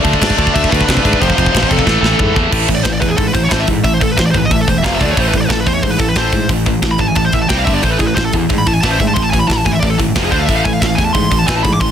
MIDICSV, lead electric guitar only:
0, 0, Header, 1, 2, 480
1, 0, Start_track
1, 0, Key_signature, 0, "minor"
1, 0, Tempo, 331309
1, 1743, Time_signature, 4, 2, 24, 8
1, 17261, End_track
2, 0, Start_track
2, 0, Title_t, "Lead electric guitar"
2, 0, Program_c, 0, 29
2, 324, Note_on_c, 0, 74, 104
2, 779, Note_on_c, 0, 76, 114
2, 808, Note_off_c, 0, 74, 0
2, 1005, Note_on_c, 0, 71, 95
2, 1029, Note_off_c, 0, 76, 0
2, 1754, Note_off_c, 0, 71, 0
2, 1776, Note_on_c, 0, 72, 101
2, 2427, Note_off_c, 0, 72, 0
2, 2499, Note_on_c, 0, 69, 79
2, 3379, Note_off_c, 0, 69, 0
2, 3985, Note_on_c, 0, 74, 77
2, 4100, Note_off_c, 0, 74, 0
2, 4100, Note_on_c, 0, 72, 83
2, 4235, Note_off_c, 0, 72, 0
2, 4247, Note_on_c, 0, 74, 94
2, 4352, Note_off_c, 0, 74, 0
2, 4358, Note_on_c, 0, 71, 84
2, 4464, Note_on_c, 0, 68, 79
2, 4484, Note_off_c, 0, 71, 0
2, 4590, Note_off_c, 0, 68, 0
2, 4596, Note_on_c, 0, 69, 75
2, 4723, Note_off_c, 0, 69, 0
2, 4742, Note_on_c, 0, 71, 79
2, 4835, Note_off_c, 0, 71, 0
2, 4841, Note_on_c, 0, 72, 86
2, 4978, Note_off_c, 0, 72, 0
2, 4978, Note_on_c, 0, 73, 89
2, 5092, Note_off_c, 0, 73, 0
2, 5098, Note_on_c, 0, 72, 85
2, 5208, Note_on_c, 0, 76, 83
2, 5214, Note_off_c, 0, 72, 0
2, 5283, Note_off_c, 0, 76, 0
2, 5564, Note_on_c, 0, 76, 81
2, 5688, Note_off_c, 0, 76, 0
2, 5705, Note_on_c, 0, 72, 87
2, 5819, Note_off_c, 0, 72, 0
2, 5833, Note_on_c, 0, 69, 93
2, 5943, Note_off_c, 0, 69, 0
2, 5959, Note_on_c, 0, 71, 74
2, 6066, Note_off_c, 0, 71, 0
2, 6079, Note_on_c, 0, 72, 86
2, 6147, Note_off_c, 0, 72, 0
2, 6175, Note_on_c, 0, 74, 93
2, 6236, Note_off_c, 0, 74, 0
2, 6246, Note_on_c, 0, 72, 86
2, 6311, Note_off_c, 0, 72, 0
2, 6347, Note_on_c, 0, 71, 88
2, 6441, Note_off_c, 0, 71, 0
2, 6451, Note_on_c, 0, 75, 85
2, 6557, Note_off_c, 0, 75, 0
2, 6557, Note_on_c, 0, 76, 96
2, 6666, Note_off_c, 0, 76, 0
2, 6673, Note_on_c, 0, 69, 61
2, 6784, Note_off_c, 0, 69, 0
2, 6796, Note_on_c, 0, 72, 77
2, 6906, Note_off_c, 0, 72, 0
2, 6924, Note_on_c, 0, 76, 91
2, 7020, Note_off_c, 0, 76, 0
2, 7026, Note_on_c, 0, 77, 99
2, 7141, Note_off_c, 0, 77, 0
2, 7170, Note_on_c, 0, 76, 85
2, 7263, Note_on_c, 0, 74, 93
2, 7273, Note_off_c, 0, 76, 0
2, 7379, Note_off_c, 0, 74, 0
2, 7412, Note_on_c, 0, 73, 83
2, 7533, Note_off_c, 0, 73, 0
2, 7533, Note_on_c, 0, 72, 87
2, 7635, Note_off_c, 0, 72, 0
2, 7655, Note_on_c, 0, 71, 88
2, 7756, Note_off_c, 0, 71, 0
2, 7791, Note_on_c, 0, 72, 91
2, 7836, Note_off_c, 0, 72, 0
2, 7841, Note_on_c, 0, 74, 99
2, 7914, Note_off_c, 0, 74, 0
2, 7914, Note_on_c, 0, 71, 73
2, 7959, Note_on_c, 0, 69, 82
2, 7987, Note_off_c, 0, 71, 0
2, 8088, Note_off_c, 0, 69, 0
2, 8121, Note_on_c, 0, 71, 83
2, 8212, Note_off_c, 0, 71, 0
2, 8212, Note_on_c, 0, 72, 90
2, 8313, Note_off_c, 0, 72, 0
2, 8319, Note_on_c, 0, 73, 93
2, 8437, Note_off_c, 0, 73, 0
2, 8437, Note_on_c, 0, 72, 79
2, 8557, Note_on_c, 0, 71, 85
2, 8567, Note_off_c, 0, 72, 0
2, 8687, Note_off_c, 0, 71, 0
2, 8696, Note_on_c, 0, 69, 79
2, 8819, Note_off_c, 0, 69, 0
2, 8819, Note_on_c, 0, 71, 71
2, 8937, Note_off_c, 0, 71, 0
2, 8943, Note_on_c, 0, 72, 84
2, 9391, Note_off_c, 0, 72, 0
2, 10016, Note_on_c, 0, 83, 100
2, 10138, Note_off_c, 0, 83, 0
2, 10146, Note_on_c, 0, 81, 106
2, 10251, Note_off_c, 0, 81, 0
2, 10251, Note_on_c, 0, 80, 84
2, 10371, Note_off_c, 0, 80, 0
2, 10377, Note_on_c, 0, 81, 97
2, 10499, Note_off_c, 0, 81, 0
2, 10500, Note_on_c, 0, 72, 64
2, 10620, Note_off_c, 0, 72, 0
2, 10625, Note_on_c, 0, 76, 85
2, 10743, Note_off_c, 0, 76, 0
2, 10743, Note_on_c, 0, 81, 99
2, 10846, Note_off_c, 0, 81, 0
2, 10852, Note_on_c, 0, 79, 98
2, 10977, Note_off_c, 0, 79, 0
2, 10978, Note_on_c, 0, 77, 90
2, 11068, Note_off_c, 0, 77, 0
2, 11073, Note_on_c, 0, 76, 90
2, 11207, Note_off_c, 0, 76, 0
2, 11220, Note_on_c, 0, 74, 82
2, 11333, Note_on_c, 0, 72, 83
2, 11341, Note_off_c, 0, 74, 0
2, 11457, Note_off_c, 0, 72, 0
2, 11467, Note_on_c, 0, 71, 92
2, 11574, Note_off_c, 0, 71, 0
2, 11580, Note_on_c, 0, 68, 53
2, 11691, Note_off_c, 0, 68, 0
2, 11696, Note_on_c, 0, 71, 73
2, 11808, Note_off_c, 0, 71, 0
2, 11813, Note_on_c, 0, 72, 102
2, 11938, Note_off_c, 0, 72, 0
2, 11955, Note_on_c, 0, 69, 90
2, 12026, Note_off_c, 0, 69, 0
2, 12435, Note_on_c, 0, 83, 93
2, 12550, Note_off_c, 0, 83, 0
2, 12568, Note_on_c, 0, 81, 86
2, 12652, Note_off_c, 0, 81, 0
2, 12652, Note_on_c, 0, 80, 87
2, 12763, Note_off_c, 0, 80, 0
2, 12769, Note_on_c, 0, 81, 109
2, 12896, Note_off_c, 0, 81, 0
2, 12900, Note_on_c, 0, 72, 70
2, 13022, Note_off_c, 0, 72, 0
2, 13024, Note_on_c, 0, 76, 102
2, 13143, Note_on_c, 0, 81, 87
2, 13144, Note_off_c, 0, 76, 0
2, 13237, Note_on_c, 0, 84, 97
2, 13264, Note_off_c, 0, 81, 0
2, 13364, Note_on_c, 0, 81, 90
2, 13370, Note_off_c, 0, 84, 0
2, 13474, Note_off_c, 0, 81, 0
2, 13480, Note_on_c, 0, 80, 99
2, 13608, Note_on_c, 0, 83, 101
2, 13612, Note_off_c, 0, 80, 0
2, 13726, Note_off_c, 0, 83, 0
2, 13732, Note_on_c, 0, 81, 91
2, 13802, Note_off_c, 0, 81, 0
2, 13808, Note_on_c, 0, 83, 100
2, 13877, Note_off_c, 0, 83, 0
2, 13877, Note_on_c, 0, 81, 97
2, 13972, Note_off_c, 0, 81, 0
2, 13986, Note_on_c, 0, 80, 103
2, 14091, Note_on_c, 0, 76, 86
2, 14105, Note_off_c, 0, 80, 0
2, 14194, Note_off_c, 0, 76, 0
2, 14200, Note_on_c, 0, 74, 85
2, 14332, Note_off_c, 0, 74, 0
2, 14341, Note_on_c, 0, 69, 91
2, 14416, Note_off_c, 0, 69, 0
2, 14844, Note_on_c, 0, 68, 78
2, 14944, Note_off_c, 0, 68, 0
2, 14950, Note_on_c, 0, 72, 90
2, 15044, Note_on_c, 0, 77, 95
2, 15068, Note_off_c, 0, 72, 0
2, 15148, Note_off_c, 0, 77, 0
2, 15154, Note_on_c, 0, 76, 77
2, 15290, Note_off_c, 0, 76, 0
2, 15296, Note_on_c, 0, 77, 96
2, 15421, Note_off_c, 0, 77, 0
2, 15423, Note_on_c, 0, 80, 125
2, 15546, Note_off_c, 0, 80, 0
2, 15546, Note_on_c, 0, 77, 78
2, 15656, Note_on_c, 0, 76, 94
2, 15666, Note_off_c, 0, 77, 0
2, 15731, Note_off_c, 0, 76, 0
2, 15737, Note_on_c, 0, 77, 91
2, 15867, Note_on_c, 0, 80, 101
2, 15881, Note_off_c, 0, 77, 0
2, 16001, Note_off_c, 0, 80, 0
2, 16001, Note_on_c, 0, 81, 94
2, 16122, Note_on_c, 0, 84, 111
2, 16134, Note_off_c, 0, 81, 0
2, 16472, Note_off_c, 0, 84, 0
2, 16497, Note_on_c, 0, 81, 91
2, 16611, Note_off_c, 0, 81, 0
2, 16611, Note_on_c, 0, 80, 99
2, 16746, Note_off_c, 0, 80, 0
2, 16746, Note_on_c, 0, 81, 89
2, 16849, Note_on_c, 0, 83, 106
2, 16867, Note_off_c, 0, 81, 0
2, 16978, Note_off_c, 0, 83, 0
2, 17001, Note_on_c, 0, 86, 115
2, 17104, Note_off_c, 0, 86, 0
2, 17109, Note_on_c, 0, 84, 89
2, 17261, Note_off_c, 0, 84, 0
2, 17261, End_track
0, 0, End_of_file